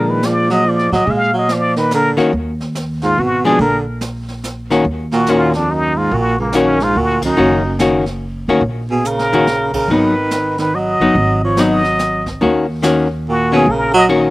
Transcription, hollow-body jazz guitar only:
0.00 0.98 F3 soft
0.00 0.98 G#3 medium
0.00 0.98 D4 soft
2.17 2.31 D#3 medium
2.17 2.31 A#3 medium
2.17 2.31 C#4 medium
2.17 2.32 F#4 medium
3.45 3.58 F3 medium
3.45 3.58 G#3 medium
3.45 3.59 D4 medium
4.71 4.84 D#3 medium
4.71 4.84 A#3 medium
4.71 4.84 C#4 medium
4.71 4.84 F#4 medium
5.28 5.52 D#3 medium
5.28 5.52 A#3 soft
5.28 5.52 C#4 medium
5.28 5.53 F#4 medium
6.54 6.78 D#3 medium
6.54 6.78 A#3 medium
6.54 6.79 C#4 medium
6.54 6.78 F#4 medium
7.37 7.61 D#3 medium
7.37 7.61 A#3 medium
7.37 7.62 C#4 medium
7.37 7.62 F#4 medium
7.80 8.04 D#3 medium
7.80 8.04 A#3 medium
7.80 8.04 C#4 medium
7.80 8.04 F#4 medium
8.49 8.62 D#3 medium
8.49 8.62 A#3 medium
8.49 8.62 C#4 medium
8.49 8.62 F#4 medium
9.33 9.46 D#3 medium
9.33 9.46 A#3 soft
9.33 9.46 C#4 medium
9.33 9.47 F#4 medium
9.90 10.14 F#3 medium
9.90 10.14 B3 soft
9.90 10.14 D#4 medium
11.01 11.14 F#3 medium
11.01 11.14 B3 medium
11.01 11.14 D#4 medium
11.58 11.82 F#3 medium
11.58 11.82 B3 medium
11.58 11.82 D#4 medium
12.41 12.65 D#3 medium
12.41 12.65 A#3 soft
12.41 12.65 C#4 soft
12.41 12.66 F#4 medium
12.83 13.07 D#3 medium
12.83 13.07 A#3 medium
12.83 13.07 C#4 medium
12.83 13.07 F#4 medium
13.52 13.65 D#3 medium
13.52 13.65 A#3 medium
13.52 13.66 C#4 medium
13.52 13.66 F#4 medium
14.09 14.30 D#3 medium
14.09 14.30 A#3 medium
14.09 14.30 C#4 medium
14.09 14.30 F#4 medium

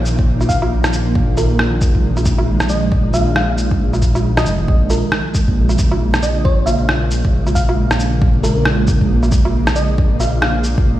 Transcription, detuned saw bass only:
0.00 0.17 A#1 medium
0.19 1.59 A#1 medium
1.60 1.93 A#1 medium
1.95 3.35 A#1 medium
3.36 3.70 A#1 medium
3.71 4.45 A#1 medium
4.47 4.67 F1 medium
4.69 5.02 A#1 medium
5.48 6.88 A#1 medium
6.89 7.23 A#1 medium
7.25 8.65 A#1 medium
8.66 8.99 A#1 medium
9.01 10.41 A#1 medium
10.43 10.76 A#1 medium
10.78 11.00 A#1 medium

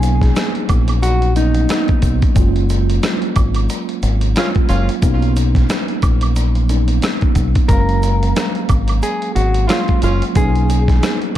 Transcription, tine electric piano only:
0.00 1.31 F#3 medium
0.00 1.31 A#3 medium
0.00 1.32 B3 medium
0.00 1.33 C#4 medium
0.00 1.34 D#4 medium
1.34 2.33 F#3 soft
1.34 2.36 A#3 medium
1.34 2.36 B3 soft
1.34 2.36 C#4 medium
1.34 2.37 D#4 medium
2.34 4.31 F#3 medium
2.34 4.32 G#3 medium
2.34 4.32 A#3 medium
2.38 4.33 C#4 medium
2.38 4.34 F4 medium
4.36 4.98 F#3 medium
4.36 5.03 G#3 soft
4.36 4.99 A#3 soft
4.36 5.02 C#4 soft
4.36 5.04 F4 medium
4.99 6.64 F#3 medium
4.99 6.65 A#3 medium
4.99 6.65 B3 medium
5.03 6.66 C#4 medium
5.03 6.67 D#4 medium
6.68 7.66 F#3 soft
6.68 7.69 A#3 medium
6.68 7.69 B3 soft
6.68 7.70 C#4 soft
6.68 7.70 D#4 medium
7.67 9.64 F#3 medium
7.67 9.65 G#3 medium
7.67 9.66 A#3 medium
7.71 9.66 C#4 medium
7.71 9.67 F5 medium
9.69 10.31 F#3 medium
9.69 10.36 G#3 soft
9.69 10.32 A#3 medium
9.69 10.35 C#4 soft
9.69 10.37 F4 medium
10.32 11.38 F#3 medium
10.32 11.38 A#3 medium
10.32 11.38 B3 medium
10.37 11.38 C#4 medium
10.37 11.38 D#4 medium

